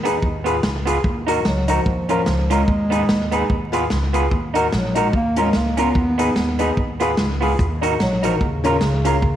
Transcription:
Already playing: upright bass D#2, bass clarinet D#3
0.03 clean electric guitar B3 D#4 G#4, upright piano D#4 G#4 B4, closed hi-hat
0.22 upright bass D#2, kick
0.44 clean electric guitar B3 F4 G#4, upright piano F4 G#4 B4, closed hi-hat
0.63 upright bass C#2, snare
0.85 clean electric guitar B3 F4 G#4, upright piano F4 G#4 B4, closed hi-hat
1.04 upright bass D#2, kick
1.27 clean electric guitar D#4 F#4 A#4, upright piano D#4 F#4 A#4, closed hi-hat
1.45 upright bass C#2, bass clarinet F#3, upright piano F#4 A#4, snare
1.68 bass clarinet F3, clean electric guitar D#4 F#4 A#4, upright piano D#4 F#4 A#4, closed hi-hat
1.86 upright bass D#2, kick
2.09 bass clarinet F3, clean electric guitar C#4 F4 A#4, upright piano C#4 F4 A#4, closed hi-hat
2.26 upright bass C#2, snare
2.50 bass clarinet G#3, clean electric guitar C#4 F4 A#4, upright piano C#4 F4 A#4, closed hi-hat
2.68 upright bass D#2, kick
2.90 clean electric guitar B3 D#4 G#4, upright piano D#4 G#4 B4, closed hi-hat
3.08 upright bass D#2, upright piano G#4 B4, snare
3.31 clean electric guitar B3 D#4 G#4, upright piano D#4 G#4 B4, closed hi-hat
3.50 upright bass D#2, kick
3.72 clean electric guitar B3 F4 G#4, upright piano F4 G#4 B4, closed hi-hat
3.90 upright bass C#2, snare
4.13 clean electric guitar B3 F4 G#4, upright piano F4 G#4 B4, closed hi-hat
4.31 upright bass D#2, kick
4.54 clean electric guitar D#4 F#4 A#4, upright piano D#4 F#4 A#4, closed hi-hat
4.72 upright bass A#1, bass clarinet F#3, upright piano F#4 A#4, snare
4.95 bass clarinet G#3, upright piano D#4 F#4 A#4, clean electric guitar D#4 F#4 A#4, closed hi-hat
5.13 upright bass D#2, bass clarinet A#3, kick
5.36 bass clarinet G#3, upright piano C#4 F4 A#4, clean electric guitar C#4 F4 A#4, closed hi-hat
5.53 upright bass C#2, bass clarinet A#3, snare
5.77 bass clarinet B3, upright piano C#4 F4 A#4, clean electric guitar C#4 F4 A#4, closed hi-hat
5.95 upright bass D#2, kick
6.18 clean electric guitar B3 D#4 G#4, upright piano D#4 G#4 B4, closed hi-hat
6.36 upright bass D#2, upright piano G#4 B4, snare
6.59 clean electric guitar B3 D#4 G#4, upright piano D#4 G#4 B4, closed hi-hat
6.77 upright bass D#2, kick
7.00 clean electric guitar B3 F4 G#4, upright piano F4 G#4 B4, closed hi-hat
7.17 upright bass C#2, snare
7.41 clean electric guitar B3 F4 G#4, upright piano F4 G#4 B4, open hi-hat
7.59 upright bass D#2, kick, hi-hat pedal
7.81 upright piano D#4 F#4 A#4, clean electric guitar D#4 F#4 A#4, closed hi-hat
7.99 upright bass A#1, bass clarinet F#3, upright piano F#4 A#4, snare
8.23 upright piano D#4 F#4 A#4, clean electric guitar D#4 F#4 A#4, closed hi-hat
8.27 bass clarinet F3
8.37 bass clarinet D#3
8.41 upright bass D#2, bass clarinet C#3, kick
8.64 upright piano C#4 F4 A#4, clean electric guitar C#4 F4 A#4, closed hi-hat
8.81 upright bass C#2, snare
9.05 upright piano C#4 F4 A#4, clean electric guitar C#4 F4 A#4, closed hi-hat
9.22 upright bass D#2, kick

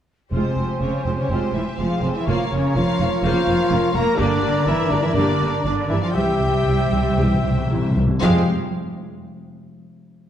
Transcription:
0.32 double bass section F1, timpani F2, cello section C3, trombone section C3 G#3, viola section G#3 F4, french horn section C4, trumpet C4, violin section G4 C5, cor anglais C5, clarinet C5, flute section G#5
0.57 double bass section F1, viola section G#3 F4
0.81 double bass section F1, cello section C#3, viola section G#3 C4, trumpet C#4, french horn section C#4, violin section C#5
1.05 double bass section F1, cello section C3, viola section G#3 F4, trumpet C4, french horn section C4, violin section C5
1.18 cello section C#3, trumpet C#4, french horn section C#4, violin section C#5
1.29 double bass section F1, cello section C3, trombone section C3 G#3, viola section G#3 F4, trumpet C4, french horn section C4, cor anglais C5, violin section C5, flute section G#5
1.54 double bass section F1, cello section E3, viola section G#3 F4, trumpet E4, french horn section E4, violin section E5
1.78 double bass section F1, cello section F3, viola section G#3 C4, trumpet F4, french horn section F4, clarinet G#4, cor anglais C5, violin section F5, flute section G#5
2.03 double bass section F1, cello section C3, viola section G#3 F4, french horn section C4, trumpet C4, violin section C5
2.16 cello section E3, trumpet E4, french horn section E4, violin section E5
2.26 double bass section F1, trombone section C#3 A#3, cello section F3, viola section A#3 F4, french horn section F4, trumpet F4, violin section A#4 C#5 F5, cor anglais C#5, clarinet C#5, flute section A#5
2.50 double bass section F1, cello section C#3, viola section A#3 F4, french horn section C#4, trumpet C#4, violin section C#5
2.74 double bass section F1, cello section F3, viola section A#3 C#4, french horn section F4, trumpet F4, cor anglais C#5, violin section F5, flute section A#5
3.00 double bass section F1, viola section A#3 F4
3.22 double bass section F1, trombone section C#3 A#3, cello section F3, viola section A#3 F4, french horn section F4, trumpet F4, clarinet C5, cor anglais C#5, violin section F5, flute section A#5
3.47 double bass section F1, viola section A#3 F4
3.70 double bass section F1, viola section A#3 C#4, clarinet A#4
3.92 double bass section F1, cello section A#3, viola section A#3 F4, french horn section A#4, trumpet A#4, violin section A#5
4.18 double bass section G1, trombone section D3 A#3, cello section D3, viola section A#3 G4, french horn section D4, trumpet D4, violin section D5, cor anglais D5, flute section A#5
4.43 double bass section G1, viola section A#3 G4
4.66 double bass section G1, cello section E3, viola section A#3 D4, french horn section E4, trumpet E4, violin section E5
4.88 double bass section G1, cello section D3, viola section A#3, french horn section D4, trumpet D4, violin section D5
4.92 viola section G4
5.01 cello section E3, french horn section E4, trumpet E4, violin section E5
5.12 double bass section G1, trombone section D3 A#3, cello section D3, french horn section D4, trumpet D4, cor anglais D5, flute section A#5
5.16 viola section A#3 G4, violin section D5
5.39 double bass section G1, viola section A#3 G4
5.62 double bass section G1, cello section D3, viola section A#3 D4, french horn section D4, trumpet D4, cor anglais D5, violin section D5, clarinet D5, flute section A#5
5.87 double bass section G1, cello section E3, french horn section E4, trumpet E4, violin section E5, flute section G#5
5.92 viola section A#3 G4
6.02 cello section F3, french horn section F4, trumpet F4, violin section F5
6.14 double bass section C2, timpani C3, trombone section E3 C4, cello section G3, french horn section G4, trumpet G4, violin section C5 E5 G5, cor anglais E5, clarinet E5, flute section G5
6.18 viola section G3 G4
6.31 timpani C3
6.39 double bass section C2, timpani C3, viola section G3 G4
6.46 timpani C3
6.54 timpani C3
6.63 double bass section C2, timpani C3
6.67 timpani C3, viola section G3 E4
6.78 timpani C3
6.86 timpani C3
6.91 double bass section C2, timpani C3, viola section G3 G4
7.01 timpani C3
7.10 timpani C3
7.16 double bass section C2, timpani C3, trombone section E3 C4, viola section G3 G4
7.26 timpani C3
7.34 timpani C3
7.43 double bass section C2, timpani C3, viola section G3 G4
7.51 timpani C3
7.58 timpani C3
7.67 double bass section C2, timpani C3
7.71 timpani C3, viola section G3 E4
7.82 timpani C3
7.91 timpani C3
7.96 double bass section C2, timpani C3, viola section G3 G4
8.07 timpani C3
8.20 timpani F2, double bass section F2, cello section F3, trombone section G3 C4, trumpet G#3, french horn section F4, clarinet G#4, cor anglais C5, violin section C5 F5, flute section G5
8.24 viola section G#3 G4

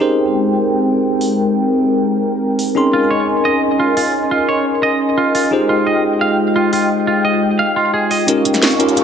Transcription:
Already playing: analog synth pad G5
0.00 analog synth pad G#3 C4 A#4, tine electric piano D#4 G4 G#4 A#4 C5
1.21 open hi-hat
2.59 open hi-hat
2.75 tine electric piano C#4 D#4 G#4 A#4 C6, analog synth pad C#4 D#5 G#5 C6
2.93 clean electric guitar F4
3.11 clean electric guitar C#5
3.45 clean electric guitar D#5
3.80 clean electric guitar F4
3.97 clean electric guitar F4, open hi-hat
4.31 clean electric guitar F4
4.49 clean electric guitar C#5
4.83 clean electric guitar D#5
5.18 clean electric guitar F4
5.35 clean electric guitar F4, open hi-hat
5.51 analog synth pad G#3 F4 G5, tine electric piano D#4 F4 G4 G#4 C5
5.69 clean electric guitar F4
5.87 clean electric guitar D#5
6.21 clean electric guitar F5
6.56 clean electric guitar F4
6.73 clean electric guitar F4, open hi-hat
7.07 clean electric guitar F4
7.25 clean electric guitar D#5
7.59 clean electric guitar F5
7.76 clean electric guitar F4
7.94 clean electric guitar G#4
8.11 clean electric guitar D#5, open hi-hat
8.27 808-style bass D#1, tine electric piano C#4 D#4 F4 G4 A#4, analog synth pad G4 F5 C#6, closed hi-hat, riser, cabasa
8.45 clean electric guitar F4, closed hi-hat, cabasa
8.54 snare, cabasa
8.62 clean electric guitar D#5, snare, closed hi-hat
8.71 cabasa
8.79 tine electric piano C#4 D#4 F4 G4 A#4, closed hi-hat
8.89 closed hi-hat
8.97 808-style bass A#1, clean electric guitar F5, closed hi-hat, cabasa

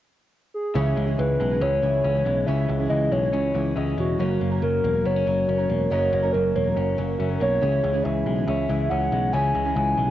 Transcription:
0.54 soft synth lead G#4
0.74 picked electric bass C#2, twelve-string acoustic guitar C#3 E3 C#4 E4 G#4, clean electric guitar C#3 C#4, upright piano E4 G#4 C#5
0.97 picked electric bass C#2, clean electric guitar G#3
1.06 twelve-string acoustic guitar C#3 E3 C#4 E4 G#4
1.18 picked electric bass C#2, clean electric guitar E3, upright piano E4 G#4 C#5, soft synth lead B4
1.40 picked electric bass B1, clean electric guitar G#3
1.49 twelve-string acoustic guitar C#4 E4 G#4
1.60 picked electric bass C#2, clean electric guitar C#4, upright piano E4 G#4 B4, soft synth lead C#5
1.82 picked electric bass C#2, twelve-string acoustic guitar E3 C#4 E4 G#4, clean electric guitar E3
2.03 picked electric bass C#2, clean electric guitar C#4, upright piano E4 G#4 C#5
2.14 twelve-string acoustic guitar C#4 E4 G#4
2.25 picked electric bass B1, clean electric guitar G#3
2.46 picked electric bass C#2, twelve-string acoustic guitar C#3 E3 C#4 E4 G#4, clean electric guitar C#3 C#4, upright piano E4 G#4 C#5, soft synth lead E5
2.68 picked electric bass C#2, clean electric guitar G#3
2.79 twelve-string acoustic guitar C#3 E3 C#4 E4 G#4
2.89 picked electric bass C#2, clean electric guitar E3, upright piano E4 G#4 C#5, soft synth lead D#5
3.12 picked electric bass B1, clean electric guitar G#3, soft synth lead C#5
3.21 twelve-string acoustic guitar C#4 E4 G#4
3.32 picked electric bass C#2, clean electric guitar C#4, upright piano E4 G#4 C#5
3.53 picked electric bass C#2, twelve-string acoustic guitar E3 C#4 E4 G#4, clean electric guitar E3
3.75 picked electric bass C#2, clean electric guitar C#4, upright piano E4 G#4 D#5
3.86 twelve-string acoustic guitar C#4 E4 G#4
3.98 picked electric bass E1, clean electric guitar G#3, soft synth lead F#4
4.18 picked electric bass F#1, twelve-string acoustic guitar F#2 C#3 F#3 A#3 C#4 A#4, clean electric guitar F#2 C#4, upright piano F#4 A#4 C#5
4.41 picked electric bass F#1, clean electric guitar A#3
4.51 twelve-string acoustic guitar F#2 C#3 F#3 A#3 C#4 A#4
4.61 picked electric bass F#1, clean electric guitar F#3, upright piano F#4 A#4 C#5, soft synth lead A#4
4.84 picked electric bass E1, clean electric guitar A#3
4.94 twelve-string acoustic guitar F#3 A#3 C#4 A#4
5.04 picked electric bass F#1, clean electric guitar B3, upright piano F#4 A#4 C#5, soft synth lead C#5
5.16 clean electric guitar C#4
5.25 picked electric bass F#1, twelve-string acoustic guitar F#3 A#3 C#4 A#4, clean electric guitar F#3
5.47 picked electric bass F#1, clean electric guitar C#4, upright piano F#4 A#4 C#5
5.58 twelve-string acoustic guitar F#3 A#3 C#4 A#4
5.69 picked electric bass E1, clean electric guitar A#3
5.90 picked electric bass F#1, twelve-string acoustic guitar F#2 C#3 F#3 A#3 C#4 A#4, clean electric guitar F#2 C#4, upright piano F#4 A#4 D#5, soft synth lead C#5
6.13 picked electric bass F#1, clean electric guitar A#3
6.22 twelve-string acoustic guitar F#2 C#3 F#3 A#3 C#4 A#4
6.32 picked electric bass F#1, clean electric guitar F#3, upright piano F#4 A#4 C#5, soft synth lead A#4
6.56 picked electric bass E1, clean electric guitar A#3, soft synth lead C#5
6.65 twelve-string acoustic guitar F#3 A#3 C#4 A#4
6.75 picked electric bass F#1, clean electric guitar C#4, upright piano F#4 A#4 C#5
6.96 picked electric bass F#1, twelve-string acoustic guitar F#3 A#3 C#4 A#4, clean electric guitar F#3
7.18 picked electric bass F#1, clean electric guitar C#4, upright piano F#4 A#4 E5
7.29 twelve-string acoustic guitar F#3 A#3 C#4 A#4
7.40 picked electric bass B1, clean electric guitar A#3, soft synth lead C#5
7.61 picked electric bass C#2, twelve-string acoustic guitar C#3 E3 C#4 E4 G#4, clean electric guitar C#3 C#4, upright piano E4 G#4 C#5
7.84 picked electric bass C#2, clean electric guitar G#3
7.93 twelve-string acoustic guitar C#3 E3 C#4 E4 G#4
8.04 picked electric bass C#2, clean electric guitar E3, upright piano E4 G#4 C#5, soft synth lead E5
8.26 picked electric bass B1, clean electric guitar G#3
8.35 twelve-string acoustic guitar C#4 E4 G#4
8.46 picked electric bass C#2, clean electric guitar C#4, upright piano E4 G#4 C#5, soft synth lead E5
8.68 picked electric bass C#2, twelve-string acoustic guitar E3 C#4 E4 G#4, clean electric guitar E3
8.89 picked electric bass C#2, clean electric guitar C#4, upright piano E4 G#4 C#5, soft synth lead F#5
9.00 twelve-string acoustic guitar C#4 E4 G#4
9.12 picked electric bass B1, clean electric guitar G#3
9.31 picked electric bass C#2, twelve-string acoustic guitar C#3 E3 C#4 E4 G#4, clean electric guitar C#3 C#4, upright piano E4 G#4 C#5, soft synth lead G#5
9.55 picked electric bass C#2, clean electric guitar G#3
9.65 twelve-string acoustic guitar C#3 E3 C#4 E4 G#4
9.75 picked electric bass C#2, clean electric guitar E3, upright piano E4 G#4 C#5, soft synth lead G#5
9.97 picked electric bass B1, clean electric guitar G#3
10.07 twelve-string acoustic guitar G#4

